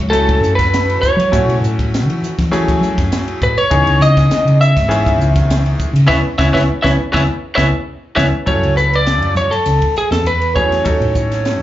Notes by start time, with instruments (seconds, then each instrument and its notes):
0.00 fingered electric bass C#2, ride
0.10 grand piano F#3 A3 C#4 E4 A4, lead electric guitar A4, hi-hat pedal, ride
0.29 kick, ride
0.41 fingered electric bass F#2, hi-hat pedal
0.55 lead electric guitar B4, kick, ride
0.60 snare
0.74 snare, hi-hat pedal, ride
0.90 ride
1.02 lead electric guitar C#5, muted fingered electric bass stroke, kick, hi-hat pedal
1.17 fingered electric bass F#3, ride
1.32 fingered electric bass A2, grand piano F#3 A3 C#4 E4 F#4, kick, hi-hat pedal, ride
1.47 fingered electric bass B2, ride
1.61 fingered electric bass A2, hi-hat pedal
1.79 kick, ride
1.94 snare, hi-hat pedal, ride
2.07 fingered electric bass E3, ride
2.22 muted fingered electric bass stroke, hi-hat pedal
2.39 fingered electric bass E3, kick, snare, ride
2.51 grand piano F#3 A3 C#4 E4 G#4, hi-hat pedal, ride
2.68 kick, ride
2.81 fingered electric bass F#3, hi-hat pedal
2.98 fingered electric bass F#2, kick, snare, ride
3.12 snare, hi-hat pedal, ride
3.27 muted fingered electric bass stroke, ride
3.41 fingered electric bass A2, lead electric guitar B4, kick, hi-hat pedal
3.58 lead electric guitar C#5, ride
3.70 fingered electric bass C#2, grand piano E3 B3 C#4 D#4 G#4, kick, hi-hat pedal, ride
3.86 fingered electric bass C#2, ride
4.00 fingered electric bass C#3, lead electric guitar D#5, snare, hi-hat pedal
4.17 kick, snare, ride
4.31 snare, hi-hat pedal, ride
4.45 fingered electric bass C#3, ride
4.61 lead electric guitar E5, hi-hat pedal
4.77 fingered electric bass G#1, kick, snare, ride
4.88 grand piano D#3 E3 B3 C#4 G#4, hi-hat pedal, ride
5.07 kick, ride
5.18 fingered electric bass C#2, hi-hat pedal
5.36 kick, snare, ride
5.50 snare, hi-hat pedal, ride
5.66 ride
5.80 muted fingered electric bass stroke, kick, hi-hat pedal
5.93 fingered electric bass C#3, ride
6.06 fingered electric bass C#2, grand piano B3 C#4 E4, lead electric guitar B4 C#5 E5, kick, snare
6.38 fingered electric bass C#2, grand piano B3 C#4 E4, lead electric guitar B4 C#5 E5, kick, snare
6.53 fingered electric bass C#2, grand piano B3 C#4 E4, lead electric guitar B4 C#5 E5, kick, snare
6.82 fingered electric bass C#2, grand piano B3 C#4 E4, lead electric guitar B4 C#5 E5, kick, snare
7.12 fingered electric bass C#2, grand piano B3 C#4 E4, lead electric guitar B4 C#5 E5, kick, snare
7.55 fingered electric bass C#2, grand piano B3 C#4 E4, lead electric guitar B4 C#5 E5, kick, snare
8.16 fingered electric bass C#2, grand piano B3 C#4 E4, lead electric guitar B4 C#5 E5, kick, snare
8.46 fingered electric bass F#2, grand piano C#3 F#3 A3 E4 A4, lead electric guitar C#5, kick, hi-hat pedal, ride
8.62 fingered electric bass C#2, ride
8.77 lead electric guitar B4, hi-hat pedal
8.93 lead electric guitar D5, ride
9.06 snare, hi-hat pedal, ride
9.22 fingered electric bass F#2, ride
9.35 fingered electric bass F#2, lead electric guitar C#5, hi-hat pedal
9.51 lead electric guitar A4, muted fingered electric bass stroke, ride
9.66 fingered electric bass C#2, hi-hat pedal, ride
9.82 kick, ride
9.96 lead electric guitar G#4, muted fingered electric bass stroke, hi-hat pedal
10.11 fingered electric bass E2, lead electric guitar A4, snare, ride
10.24 fingered electric bass E2, lead electric guitar B4, hi-hat pedal, ride
10.42 ride
10.55 grand piano F#3 A3 C#4 E4 G#4, lead electric guitar C#5, kick, hi-hat pedal
10.72 snare, ride
10.84 fingered electric bass D#2, grand piano F#3 A3 C#4 D#4 A4, kick, hi-hat pedal, ride
11.00 fingered electric bass A2, ride
11.15 kick, hi-hat pedal
11.32 snare, ride
11.45 snare, hi-hat pedal, ride
11.59 fingered electric bass D#2